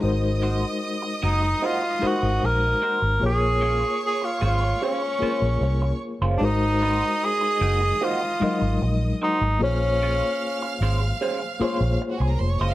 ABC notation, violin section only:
X:1
M:4/4
L:1/16
Q:1/4=75
K:Abmix
V:1 name="Violin section"
[ee']12- [ee']2 z2 | [dd']12- [dd']2 z2 | [ee']12- [ee']2 z2 | [ff']12 z/2 [Gg]/2 [Aa]/2 [Bb]/2 [cc']/2 [dd']/2 [ee']/2 [ff']/2 |]